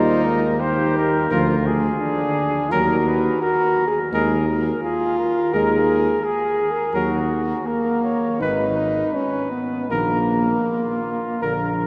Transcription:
Already playing: D#2 G3 D#4 A#4 C5
0.24 G#3 A#4
0.59 A#3 G4 C5
0.96 A#4
1.30 D2 F3 F4 A#4
1.67 G#4
2.01 D4
2.71 D#2 F#3 F#4 A#4
3.07 B4
3.41 F#4 A#4
3.88 G#4
4.13 D#2 G#3 G#4 A#4
4.48 A#4
4.82 F4 G#4
5.19 A#4
5.53 D#2 G#3 G#4 A#4
6.24 G#4
6.71 A#4
6.94 D#2 F#3 F#4 A#4
7.65 A#3 A#4
8.03 C#5
8.41 G#1 D#3 D#4 B4
8.78 A#4
9.15 C#4 B4
9.52 B3
9.89 A#1 D#3 A#3 A#4
10.68 F4
11.42 A#1 D3 A#4

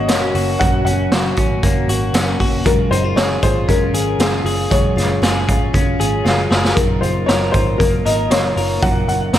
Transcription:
Already playing: F#2 A#3 F#4
0.08 F#1 F#3 A#3 C#4 F#4 C#5, snare, closed hi-hat
0.35 F#1 A#3 C#4 F#4, open hi-hat
0.59 F#1 F#2 F#3 A#3 C#4 F#4 F#5, kick, closed hi-hat
0.85 F#1 A#3 C#4 F#4 F#5, closed hi-hat
1.11 F#1 F#3 A#3 C#4 F#4, snare, closed hi-hat
1.37 G#1 A#3 C#4 F#4, kick, closed hi-hat
1.63 F#1 F#3 A#3 C#4 F#4, kick, closed hi-hat
1.88 G#1 A#3 C#4 F#4, closed hi-hat
2.13 F#1 F#3 A#3 C#4 F#4, snare, closed hi-hat
2.39 F#1 A#3 C#4 F#4, kick, open hi-hat
2.64 F#1 F#2 F#3 G#3 C#4 F4 A#4, kick, closed hi-hat
2.91 F#1 G#3 C#4 D#4 F4 C5, closed hi-hat
3.04 F4
3.16 F#1 F#3 G#3 C#4 F4 G#4 C#5, snare, closed hi-hat
3.42 G#1 G#3 C#4 F4 C5, kick, closed hi-hat
3.68 F#1 F#3 G#3 C#4 F4 A#4, kick, closed hi-hat
3.93 G#1 G#3 C#4 F4 G#4, closed hi-hat
4.19 F#1 F#3 G#3 C#4 F4 G#4, snare, closed hi-hat
4.44 F#1 G#3 C#4 F4 G#4, open hi-hat
4.70 F#1 F#2 F#3 G#3 C#4 F4 C#5, kick, closed hi-hat
4.96 F#1 G#3 C#4 F4, snare, closed hi-hat
5.22 F#1 F#3 G#3 C#4 F4 G#4, snare, closed hi-hat
5.47 G#1 G#3 C#4 F4, kick, closed hi-hat
5.73 F#1 F#3 G#3 C#4 F4, kick, closed hi-hat
5.99 G#1 G#3 C#4 F4 G#4, closed hi-hat
6.25 F#1 F#3 G#3 C#4 F4, snare
6.51 F#1 G#3 C#4 F4 G#4, snare
6.65 snare
6.75 F#1 F#2 F#3 A#3 D#4 F4 A#4, kick, closed hi-hat
7.01 F#1 D#4 F4 C5, closed hi-hat
7.05 A#3
7.26 F#1 F#3 A#3 A#4 C#5, snare, closed hi-hat
7.30 D#4 F4
7.52 G#1 D#4 F4 C5, kick, closed hi-hat
7.57 A#3
7.78 F#1 F#3 A#3 D#4 A#4, kick, closed hi-hat
7.82 F4
8.05 G#1 A#3 D#4 F4 A#4 D#5, closed hi-hat
8.30 F#1 F#3 A#3 D#4 F4 C#5, snare, closed hi-hat
8.57 F#1 A#3 D#4 F4 A#4, open hi-hat
8.82 F#1 F#2 F#3 A#3 D#4 F4 F#5, kick, closed hi-hat
9.08 F#1 A#3 D#4 F4 F#5, closed hi-hat
9.33 F#1 F#3 A#3 D#4 F4 A#4, snare, closed hi-hat

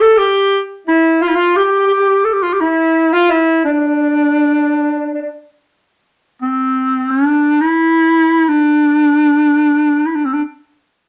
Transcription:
0.00 A4
0.17 G4
0.87 E4
1.22 F4
1.28 E4
1.35 F4
1.56 G4
1.64 G4
1.72 G4
1.79 G4
1.86 G4
1.93 G4
2.01 G4
2.10 G4
2.25 A4
2.33 G4
2.43 F4
2.53 G4
2.61 E4
3.13 F4
3.30 E4
3.65 D4
3.72 D4
3.79 D4
3.87 D4
3.94 D4
4.01 D4
4.09 D4
4.17 D4
4.24 D4
4.31 D4
4.39 D4
4.46 D4
4.54 D4
4.61 D4
4.68 D4
4.76 D4
4.83 D4
4.91 D4
4.99 D4
5.06 D4
5.14 D4
5.21 D4
6.42 C4
7.11 D4
7.61 E4
8.49 D4
10.06 E4
10.15 D4
10.25 C4
10.33 D4

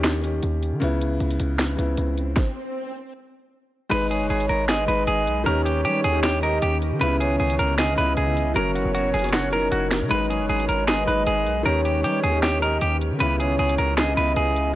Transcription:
Already playing: D#2 D#3 C#4 G4
0.04 finger snap, snare, closed hi-hat
0.21 D#3 C#4 G4, closed hi-hat
0.43 D#2, closed hi-hat
0.63 closed hi-hat
0.73 D#3
0.80 C#2 C#3 B3 E4, closed hi-hat, swell
1.01 closed hi-hat
1.20 C#2, closed hi-hat
1.31 closed hi-hat
1.40 C#2, closed hi-hat
1.59 finger snap, snare, closed hi-hat
1.76 C#2 C#3 B3 E4, closed hi-hat
1.97 C#2, closed hi-hat
2.18 closed hi-hat
2.36 kick, snare
3.89 G#1 G#3 D#4 B4, closed hi-hat, crash
4.11 G#4 C#5, closed hi-hat
4.21 F#1
4.30 G#1 G#4, closed hi-hat
4.40 closed hi-hat
4.49 G#1 A#4, closed hi-hat
4.69 G#4 D#5, finger snap, snare, closed hi-hat
4.86 G#1 G#3 D#4 B4, closed hi-hat
5.07 G#1 G#4, closed hi-hat
5.27 B1, closed hi-hat
5.44 D#2 D#3 C#4 G4 A#4 C#5, closed hi-hat
5.65 G4, closed hi-hat
5.85 G3 G4, closed hi-hat
6.04 D#2 G#4, closed hi-hat
6.13 D#3 C#4 G4
6.23 G4, finger snap, snare, closed hi-hat
6.41 D#3 C#4 G4 A#4 D#5, closed hi-hat
6.62 D#2 G4, closed hi-hat
6.82 closed hi-hat
6.92 D#3
6.99 C#2 C#3 B3 E4 B4, closed hi-hat
7.20 G#4 C#5, closed hi-hat
7.40 C#2 G#4, closed hi-hat
7.50 closed hi-hat
7.59 C#2 A#4, closed hi-hat
7.78 G#4 D#5, finger snap, snare, closed hi-hat
7.95 C#2 C#3 B3 E4 B4, closed hi-hat
8.17 C#2 G#4, closed hi-hat
8.37 closed hi-hat
8.54 F#1 F#3 C#4 A#4 C#5, closed hi-hat
8.75 F#4, closed hi-hat
8.85 F#1
8.95 F#4, closed hi-hat
9.14 F#1 G#4, closed hi-hat
9.19 F#3, closed hi-hat
9.24 C#4 C#5, closed hi-hat
9.29 closed hi-hat
9.33 F#4, finger snap, snare, closed hi-hat
9.51 F#3 C#4 D#4 A#4, closed hi-hat
9.72 F#1 F#4, closed hi-hat
9.91 finger snap, snare, closed hi-hat
10.02 C#3
10.09 G#1 G#3 D#4 B4, closed hi-hat
10.30 G#4 C#5, closed hi-hat
10.40 F#1
10.49 G#1 G#4, closed hi-hat
10.60 closed hi-hat
10.69 G#1 A#4, closed hi-hat
10.88 G#4 D#5, finger snap, snare, closed hi-hat
11.06 G#1 G#3 D#4 B4, closed hi-hat
11.27 G#1 G#4, closed hi-hat
11.46 B1, closed hi-hat
11.63 D#2 D#3 C#4 G4 A#4 C#5, closed hi-hat
11.85 G4, closed hi-hat
12.04 G3 G4, closed hi-hat
12.24 D#2 G#4, closed hi-hat
12.32 D#3 C#4 G4
12.43 G4, finger snap, snare, closed hi-hat
12.60 D#3 C#4 G4 A#4 D#5, closed hi-hat
12.81 D#2 G4, closed hi-hat
13.01 closed hi-hat
13.11 D#3
13.19 C#2 C#3 B3 E4 B4, closed hi-hat
13.40 G#4 C#5, closed hi-hat
13.59 C#2 G#4, closed hi-hat
13.69 closed hi-hat
13.78 C#2 A#4, closed hi-hat
13.98 G#4 D#5, finger snap, snare, closed hi-hat
14.15 C#2 C#3 B3 E4 B4, closed hi-hat
14.36 C#2 G#4, closed hi-hat
14.56 closed hi-hat

